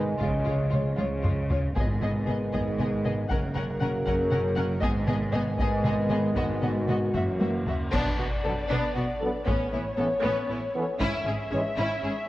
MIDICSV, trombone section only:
0, 0, Header, 1, 2, 480
1, 0, Start_track
1, 0, Tempo, 513699
1, 192, Time_signature, 6, 3, 24, 8
1, 11479, End_track
2, 0, Start_track
2, 0, Title_t, "Trombone section"
2, 0, Program_c, 0, 61
2, 0, Note_on_c, 0, 51, 84
2, 0, Note_on_c, 0, 56, 80
2, 157, Note_off_c, 0, 51, 0
2, 213, Note_on_c, 0, 53, 65
2, 1370, Note_off_c, 0, 56, 0
2, 1377, Note_off_c, 0, 53, 0
2, 1639, Note_on_c, 0, 51, 70
2, 1641, Note_on_c, 0, 56, 73
2, 3046, Note_off_c, 0, 51, 0
2, 3047, Note_off_c, 0, 56, 0
2, 3095, Note_on_c, 0, 49, 79
2, 3100, Note_on_c, 0, 54, 80
2, 4474, Note_off_c, 0, 49, 0
2, 4477, Note_off_c, 0, 54, 0
2, 4519, Note_on_c, 0, 51, 82
2, 4519, Note_on_c, 0, 56, 87
2, 6637, Note_off_c, 0, 51, 0
2, 6637, Note_off_c, 0, 56, 0
2, 6678, Note_on_c, 0, 52, 62
2, 6678, Note_on_c, 0, 58, 61
2, 7130, Note_off_c, 0, 52, 0
2, 7130, Note_off_c, 0, 58, 0
2, 7897, Note_on_c, 0, 59, 64
2, 7902, Note_on_c, 0, 54, 68
2, 7977, Note_off_c, 0, 59, 0
2, 7981, Note_off_c, 0, 54, 0
2, 8620, Note_on_c, 0, 54, 65
2, 8623, Note_on_c, 0, 59, 66
2, 8700, Note_off_c, 0, 54, 0
2, 8701, Note_off_c, 0, 59, 0
2, 9338, Note_on_c, 0, 52, 68
2, 9341, Note_on_c, 0, 59, 75
2, 9416, Note_off_c, 0, 52, 0
2, 9418, Note_off_c, 0, 59, 0
2, 10040, Note_on_c, 0, 52, 67
2, 10046, Note_on_c, 0, 59, 69
2, 10124, Note_off_c, 0, 52, 0
2, 10127, Note_off_c, 0, 59, 0
2, 10777, Note_on_c, 0, 52, 70
2, 10782, Note_on_c, 0, 56, 75
2, 10853, Note_off_c, 0, 52, 0
2, 10856, Note_off_c, 0, 56, 0
2, 11479, End_track
0, 0, End_of_file